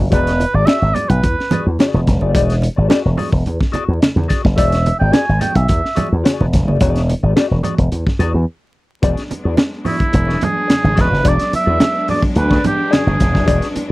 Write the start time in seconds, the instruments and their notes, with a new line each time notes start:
0.01 muted clean electric guitar stroke
0.11 slap bass E1, clean electric guitar F#4 G#4 D5, oboe B4, kick, closed hi-hat
0.27 snare, closed hi-hat
0.40 muted clean electric guitar stroke, closed hi-hat, muted conga
0.54 slap bass G#1, clean electric guitar F#4 G#4 D5, oboe D5
0.66 clean electric guitar F#4 G#4 D5, oboe E5, snare, closed hi-hat, high conga
0.82 slap bass G#1, muted clean electric guitar stroke
0.94 clean electric guitar F#4 G#4 D5, oboe D5, closed hi-hat, low conga
1.09 slap bass B1, oboe B4, kick, closed hi-hat
1.23 slap bass E2, kick, closed hi-hat, muted conga
1.39 muted clean electric guitar stroke, snare
1.51 clean electric guitar F#4 G#4 D5, muted slap bass stroke, closed hi-hat, muted conga, low conga
1.67 slap bass E2, muted clean electric guitar stroke
1.79 clean electric guitar F#4 G#4 D5, snare, closed hi-hat, high conga
1.94 slap bass E1, high conga
2.07 slap bass E1, muted clean electric guitar stroke, kick, snare, closed hi-hat
2.21 slap bass F#1, clean electric guitar F#4 G#4 D5, high conga
2.34 slap bass E1, clean electric guitar F#4 G#4 D5, kick, closed hi-hat
2.50 snare, closed hi-hat
2.62 muted clean electric guitar stroke, closed hi-hat, muted conga
2.76 slap bass G#1, clean electric guitar F#4 G#4 D5
2.88 clean electric guitar F#4 G#4 D5, snare, closed hi-hat, high conga
3.04 slap bass E1, muted clean electric guitar stroke
3.17 clean electric guitar F#4 G#4 D5, open hi-hat, low conga
3.32 slap bass E1, muted clean electric guitar stroke, kick
3.46 slap bass E2, closed hi-hat, muted conga
3.60 muted clean electric guitar stroke, kick, snare
3.72 clean electric guitar F#4 G#4 D5, muted slap bass stroke, closed hi-hat, muted conga
3.86 slap bass E2, muted clean electric guitar stroke
3.99 muted clean electric guitar stroke, snare, closed hi-hat, high conga
4.16 slap bass E2, high conga
4.28 clean electric guitar F#4 G#4 D5, kick, snare, closed hi-hat
4.44 slap bass F#1, muted clean electric guitar stroke, kick, snare, high conga
4.57 slap bass E1, clean electric guitar F#4 G#4 D5, oboe E5, kick, closed hi-hat
4.72 snare, closed hi-hat
4.85 muted clean electric guitar stroke, closed hi-hat, muted conga
4.99 slap bass G#1, clean electric guitar F#4 G#4 D5, oboe G5
5.12 clean electric guitar F#4 G#4 D5, oboe G#5, snare, closed hi-hat, high conga
5.27 slap bass G#1, muted clean electric guitar stroke
5.39 clean electric guitar F#4 G#4 D5, oboe G5, closed hi-hat, low conga
5.55 slap bass B1, oboe E5, muted clean electric guitar stroke, kick, closed hi-hat
5.68 slap bass E2, kick, closed hi-hat
5.84 muted clean electric guitar stroke, snare
5.95 clean electric guitar F#4 G#4 D5, muted slap bass stroke, closed hi-hat, muted conga, low conga
6.11 slap bass E2, muted clean electric guitar stroke
6.24 clean electric guitar F#4 G#4 D5, snare, closed hi-hat, high conga
6.40 slap bass E1, high conga
6.53 slap bass E1, muted clean electric guitar stroke, kick, snare, closed hi-hat
6.68 slap bass F#1, clean electric guitar F#4 G#4 D5, high conga
6.80 slap bass E1, clean electric guitar F#4 G#4 D5, kick, closed hi-hat
6.95 snare, closed hi-hat
7.08 muted clean electric guitar stroke, closed hi-hat, muted conga
7.23 slap bass G#1, clean electric guitar F#4 G#4 D5
7.36 clean electric guitar F#4 G#4 D5, snare, closed hi-hat, high conga
7.50 slap bass E1, muted clean electric guitar stroke
7.63 clean electric guitar F#4 G#4 D5, closed hi-hat, low conga
7.77 slap bass E1, muted clean electric guitar stroke, kick, closed hi-hat
7.92 slap bass E2, closed hi-hat, muted conga
8.06 muted clean electric guitar stroke, kick, snare
8.19 slap bass E2, clean electric guitar F#4 G#4 D5, closed hi-hat, muted conga
8.34 slap bass E2, muted clean electric guitar stroke
9.02 slap bass E1, string section F#3 G#3 B3 D4, clean electric guitar F#4 G#4 D5, kick, closed hi-hat
9.17 snare, closed hi-hat
9.30 muted clean electric guitar stroke, muted slap bass stroke, closed hi-hat, muted conga
9.44 slap bass E2, clean electric guitar F#4 G#4 D5
9.57 snare, closed hi-hat, high conga
9.85 oboe E4, clean electric guitar F#4 G#4 D5, open hi-hat, low conga
9.99 muted clean electric guitar stroke, kick, closed hi-hat
10.12 slap bass E1, muted clean electric guitar stroke, kick, closed hi-hat
10.27 clean electric guitar F#4 G#4 D5, snare
10.41 oboe G#4, closed hi-hat, muted conga, low conga
10.54 muted clean electric guitar stroke
10.67 muted clean electric guitar stroke, snare, closed hi-hat, high conga
10.83 slap bass G#1, muted clean electric guitar stroke, high conga
10.95 slap bass E1, clean electric guitar F#4 G#4 D5, kick, snare, closed hi-hat
11.01 oboe B4
11.10 slap bass F#1, muted clean electric guitar stroke
11.14 snare
11.24 slap bass E1, clean electric guitar F#4 G#4 D5, kick, closed hi-hat
11.28 oboe D5
11.39 snare, closed hi-hat
11.51 muted clean electric guitar stroke, muted slap bass stroke, closed hi-hat, muted conga
11.55 oboe E5
11.66 slap bass E2, clean electric guitar F#4 G#4 D5
11.80 snare, closed hi-hat, high conga
12.08 clean electric guitar F#4 G#4 D5, oboe D5, open hi-hat, low conga
12.22 kick
12.36 slap bass D2, oboe B4, muted clean electric guitar stroke, closed hi-hat, muted conga
12.50 clean electric guitar F#4 G#4 D5, kick, snare
12.64 oboe G4, closed hi-hat, muted conga, low conga
12.79 muted clean electric guitar stroke
12.90 clean electric guitar F#4 G#4 D5, oboe G#4, snare, closed hi-hat, high conga
13.07 slap bass G1, high conga
13.17 slap bass E1, muted clean electric guitar stroke, kick, snare, closed hi-hat
13.33 slap bass F#1, clean electric guitar F#4 G#4 D5, kick, snare
13.46 slap bass E1, clean electric guitar F#4 G#4 D5, kick, closed hi-hat
13.62 snare, closed hi-hat
13.74 muted clean electric guitar stroke, muted slap bass stroke, closed hi-hat, muted conga
13.89 clean electric guitar D5